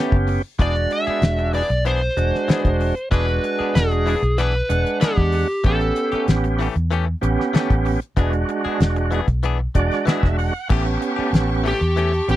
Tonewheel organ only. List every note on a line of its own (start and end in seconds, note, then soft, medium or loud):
0.00 0.42 B3 medium
0.00 0.42 C#4 medium
0.00 0.42 G4 medium
0.59 1.62 G#3 medium
0.59 1.62 D4 medium
0.59 1.63 F#4 medium
2.17 2.95 G#3 medium
2.17 2.95 D4 medium
2.17 2.95 F#4 medium
3.12 4.15 G#3 medium
3.12 4.15 D4 medium
3.12 4.15 F#4 medium
4.69 5.47 G#3 medium
4.69 5.48 D4 medium
4.69 5.47 F#5 medium
5.64 6.68 B3 medium
5.64 6.68 C#4 medium
5.64 6.68 G4 medium
7.21 8.00 B3 medium
7.21 8.00 C#4 medium
7.21 8.00 G4 medium
8.17 9.21 G#3 medium
8.17 9.21 D4 medium
8.17 9.21 F#4 medium
9.75 10.53 G#3 medium
9.75 10.53 D4 medium
9.75 10.53 F#4 medium
9.75 10.05 D5 medium
10.07 10.37 E5 medium
10.39 10.68 F#5 medium
10.70 11.74 B3 medium
10.70 11.74 C#4 medium
10.70 11.74 G4 medium
12.28 12.36 B3 medium
12.28 12.36 C#4 medium
12.28 12.36 G4 medium